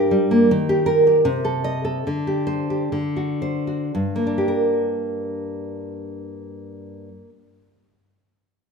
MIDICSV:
0, 0, Header, 1, 2, 480
1, 0, Start_track
1, 0, Key_signature, -2, "minor"
1, 0, Tempo, 744417
1, 320, Time_signature, 2, 2, 24, 8
1, 806, Tempo, 807537
1, 1286, Tempo, 877193
1, 1766, Tempo, 988468
1, 2726, Tempo, 947867
1, 4654, End_track
2, 0, Start_track
2, 0, Title_t, "Nylon-string guitar"
2, 0, Program_c, 0, 24
2, 0, Note_on_c, 0, 43, 88
2, 0, Note_on_c, 0, 67, 64
2, 0, Note_on_c, 0, 70, 74
2, 72, Note_on_c, 0, 55, 56
2, 200, Note_on_c, 0, 58, 61
2, 298, Note_off_c, 0, 43, 0
2, 312, Note_off_c, 0, 70, 0
2, 314, Note_off_c, 0, 55, 0
2, 315, Note_off_c, 0, 67, 0
2, 319, Note_off_c, 0, 58, 0
2, 330, Note_on_c, 0, 51, 71
2, 446, Note_on_c, 0, 67, 61
2, 555, Note_on_c, 0, 70, 73
2, 681, Note_off_c, 0, 67, 0
2, 689, Note_on_c, 0, 67, 51
2, 754, Note_off_c, 0, 70, 0
2, 797, Note_off_c, 0, 51, 0
2, 805, Note_on_c, 0, 48, 70
2, 810, Note_off_c, 0, 67, 0
2, 922, Note_on_c, 0, 69, 60
2, 1040, Note_on_c, 0, 75, 70
2, 1153, Note_off_c, 0, 69, 0
2, 1160, Note_on_c, 0, 69, 60
2, 1235, Note_off_c, 0, 75, 0
2, 1271, Note_off_c, 0, 48, 0
2, 1284, Note_off_c, 0, 69, 0
2, 1292, Note_on_c, 0, 50, 58
2, 1403, Note_on_c, 0, 67, 46
2, 1510, Note_on_c, 0, 72, 62
2, 1632, Note_off_c, 0, 67, 0
2, 1639, Note_on_c, 0, 67, 45
2, 1711, Note_off_c, 0, 72, 0
2, 1752, Note_off_c, 0, 50, 0
2, 1759, Note_on_c, 0, 50, 54
2, 1765, Note_off_c, 0, 67, 0
2, 1878, Note_on_c, 0, 66, 42
2, 2001, Note_on_c, 0, 72, 50
2, 2118, Note_off_c, 0, 66, 0
2, 2124, Note_on_c, 0, 66, 40
2, 2203, Note_off_c, 0, 72, 0
2, 2236, Note_off_c, 0, 50, 0
2, 2250, Note_off_c, 0, 66, 0
2, 2257, Note_on_c, 0, 43, 58
2, 2359, Note_on_c, 0, 58, 45
2, 2413, Note_on_c, 0, 62, 44
2, 2467, Note_on_c, 0, 67, 46
2, 2516, Note_on_c, 0, 70, 45
2, 3825, Note_off_c, 0, 43, 0
2, 3931, Note_off_c, 0, 58, 0
2, 3987, Note_off_c, 0, 62, 0
2, 4043, Note_off_c, 0, 67, 0
2, 4095, Note_off_c, 0, 70, 0
2, 4654, End_track
0, 0, End_of_file